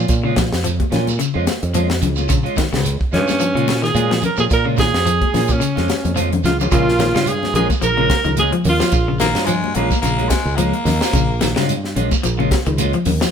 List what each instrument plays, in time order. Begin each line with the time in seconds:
Already playing: clean electric guitar F3 C#4 F4
0.08 fingered electric bass A#2, kick, closed hi-hat, shekere
0.23 clean electric guitar C#3 G#3 C#4 F4
0.36 clean electric guitar F3, muted clean electric guitar stroke, kick, snare, closed hi-hat, high conga, shekere
0.52 fingered electric bass F2, muted clean electric guitar stroke, snare, shekere
0.64 clean electric guitar F3, closed hi-hat, shekere
0.79 muted clean electric guitar stroke, kick, closed hi-hat, high conga
0.90 fingered electric bass A#2, clean electric guitar C#4 F4, muted clean electric guitar stroke, snare, closed hi-hat, low conga, shekere
1.07 muted clean electric guitar stroke, closed hi-hat, high conga, shekere
1.18 clean electric guitar C#3, muted clean electric guitar stroke, closed hi-hat, shekere
1.34 fingered electric bass F2, clean electric guitar G#3 C#4 F4
1.46 muted clean electric guitar stroke, snare, closed hi-hat, high conga, shekere
1.62 fingered electric bass F2, closed hi-hat, shekere
1.73 clean electric guitar F3 G#3 C#4 F4, closed hi-hat, high conga, shekere
1.89 muted clean electric guitar stroke, snare, closed hi-hat
2.01 fingered electric bass C#2, muted clean electric guitar stroke, closed hi-hat, low conga, shekere
2.16 clean electric guitar C#4 F4, high conga, shekere
2.29 fingered electric bass A#1, clean electric guitar C#3, kick, closed hi-hat, shekere
2.43 clean electric guitar G#3 C#4 F4, closed hi-hat
2.56 clean electric guitar D#3, muted clean electric guitar stroke, muted fingered electric bass stroke, kick, snare, closed hi-hat, high conga, shekere
2.72 fingered electric bass C#2, clean electric guitar C#3, muted clean electric guitar stroke, snare, closed hi-hat, shekere
2.84 closed hi-hat, shekere
2.99 muted clean electric guitar stroke, muted fingered electric bass stroke, kick
3.11 fingered electric bass G2, clean electric guitar G#3 C#4 F4, alto saxophone C#4, trumpet C#4, snare, closed hi-hat, low conga, shekere
3.27 muted clean electric guitar stroke, snare, closed hi-hat, high conga, shekere
3.39 clean electric guitar F3, muted clean electric guitar stroke, closed hi-hat, shekere
3.55 fingered electric bass A#2, clean electric guitar C#3 G#3 C#4 F4, closed hi-hat
3.67 muted clean electric guitar stroke, snare, closed hi-hat, high conga, shekere
3.82 clean electric guitar D#3, alto saxophone G#4, trumpet G#4, snare, shekere
3.94 fingered electric bass A#2, clean electric guitar G#3 C#4 F4, closed hi-hat, high conga, shekere
4.11 clean electric guitar F3, muted clean electric guitar stroke, snare, high conga
4.22 trumpet A#4, alto saxophone A#4, muted clean electric guitar stroke, closed hi-hat, low conga, shekere
4.37 fingered electric bass A#2, clean electric guitar F3 C#4 F4, alto saxophone G#4, trumpet G#4, high conga, shekere
4.50 fingered electric bass A#2, alto saxophone A#4, trumpet A#4, kick, closed hi-hat, shekere
4.65 clean electric guitar C#3 G#3 C#4 F4
4.77 clean electric guitar D#3, alto saxophone G#4, trumpet G#4, muted clean electric guitar stroke, kick, snare, closed hi-hat, high conga, shekere
4.93 fingered electric bass F2, muted clean electric guitar stroke, snare, shekere
5.06 clean electric guitar F3, closed hi-hat, shekere
5.20 muted clean electric guitar stroke, kick, closed hi-hat, high conga
5.33 fingered electric bass A#2, clean electric guitar C#4 F4, snare, open hi-hat, low conga, shekere
5.48 muted clean electric guitar stroke, kick, closed hi-hat, high conga, shekere
5.52 trumpet C#4, alto saxophone C#4
5.60 clean electric guitar C#3, muted clean electric guitar stroke, closed hi-hat, shekere
5.75 fingered electric bass F2, clean electric guitar G#3 C#4 F4, snare, high conga
5.88 muted clean electric guitar stroke, snare, closed hi-hat, high conga, shekere
6.04 fingered electric bass F2, closed hi-hat, high conga, shekere
6.15 clean electric guitar F3 G#3 C#4 F4, closed hi-hat, high conga, shekere
6.30 muted clean electric guitar stroke, closed hi-hat, low conga
6.43 fingered electric bass C#2, alto saxophone F4, trumpet F4, muted clean electric guitar stroke, snare, closed hi-hat, low conga, shekere
6.58 clean electric guitar C#4 F4, low conga, shekere
6.70 fingered electric bass A#1, clean electric guitar C#3 G#3 C#4 F4, alto saxophone F4, trumpet F4, kick, closed hi-hat, shekere
6.86 muted clean electric guitar stroke, snare
6.99 clean electric guitar D#3, snare, closed hi-hat, high conga, shekere
7.14 fingered electric bass G2, clean electric guitar C#3 G#3 C#4 F4, snare, closed hi-hat, shekere
7.26 alto saxophone G#4, closed hi-hat, shekere
7.30 trumpet G#4
7.41 muted clean electric guitar stroke, snare, high conga
7.54 fingered electric bass A#1, clean electric guitar G#3 C#4 F4, alto saxophone G#4, trumpet G#4, closed hi-hat, low conga, shekere
7.70 muted clean electric guitar stroke, kick, closed hi-hat, high conga, shekere
7.81 fingered electric bass A#1, clean electric guitar F3, alto saxophone A#4, trumpet A#4, muted clean electric guitar stroke, closed hi-hat, shekere
7.97 clean electric guitar C#3 G#3 C#4 F4, high conga
8.10 muted clean electric guitar stroke, kick, snare, closed hi-hat, high conga, shekere
8.24 fingered electric bass C#2, clean electric guitar D#3, closed hi-hat, low conga, shekere
8.37 clean electric guitar G#3 C#4 F4, alto saxophone G#4, trumpet G#4, closed hi-hat, high conga, shekere
8.52 clean electric guitar F3, muted clean electric guitar stroke, closed hi-hat
8.64 fingered electric bass D#2, trumpet F4, muted clean electric guitar stroke, open hi-hat, low conga, shekere
8.69 alto saxophone F4
8.79 clean electric guitar F3 C#4 F4, snare, high conga, shekere
8.92 fingered electric bass A#1, kick, closed hi-hat, shekere
9.08 clean electric guitar C#3, muted clean electric guitar stroke
9.19 clean electric guitar D#3, baritone saxophone A#3, muted clean electric guitar stroke, snare, closed hi-hat, high conga, shekere
9.35 fingered electric bass G2, clean electric guitar G#3 C#4 F4, snare, closed hi-hat, shekere
9.45 clean electric guitar F3, baritone saxophone G#3, closed hi-hat, shekere
9.63 muted clean electric guitar stroke, high conga
9.75 fingered electric bass A#1, clean electric guitar G#3 C#4 F4, baritone saxophone A#3, closed hi-hat, low conga, shekere
9.90 muted clean electric guitar stroke, kick, high conga, shekere
10.01 fingered electric bass A#1, clean electric guitar C#3, baritone saxophone A#3, muted clean electric guitar stroke, closed hi-hat, shekere
10.17 clean electric guitar G#3 C#4, muted clean electric guitar stroke, closed hi-hat, high conga
10.29 baritone saxophone G#3, muted clean electric guitar stroke, kick, snare, closed hi-hat, high conga, shekere
10.45 fingered electric bass C#2, shekere
10.56 clean electric guitar F3 G#3 C#4, baritone saxophone A#3, closed hi-hat, high conga, shekere
10.73 muted clean electric guitar stroke, closed hi-hat
10.85 fingered electric bass D#2, muted clean electric guitar stroke, snare, open hi-hat, low conga, shekere
11.01 clean electric guitar C#4 F4, snare, shekere
11.13 fingered electric bass A#1, clean electric guitar C#3, kick, closed hi-hat, shekere
11.27 muted clean electric guitar stroke
11.40 clean electric guitar D#3, muted clean electric guitar stroke, snare, closed hi-hat, high conga, shekere
11.55 fingered electric bass G2, clean electric guitar C#3 G#3 C#4 F4, snare, closed hi-hat, shekere
11.69 closed hi-hat, shekere
11.83 muted clean electric guitar stroke, snare
11.95 fingered electric bass A#1, clean electric guitar G#3 C#4 F4, closed hi-hat, low conga, shekere
12.11 muted clean electric guitar stroke, kick, closed hi-hat, high conga, shekere
12.23 fingered electric bass A#1, clean electric guitar F3, muted clean electric guitar stroke, closed hi-hat, shekere
12.38 clean electric guitar C#3 G#3 C#4 F4, high conga
12.50 muted clean electric guitar stroke, kick, snare, closed hi-hat, high conga, shekere
12.66 fingered electric bass C#2, clean electric guitar D#3, closed hi-hat, shekere
12.78 clean electric guitar G#3 C#4 F4, closed hi-hat, high conga, shekere
12.93 clean electric guitar F3, muted clean electric guitar stroke, closed hi-hat
13.05 fingered electric bass D#2, muted clean electric guitar stroke, open hi-hat, low conga, shekere
13.21 clean electric guitar F3 C#4 F4, snare, high conga, shekere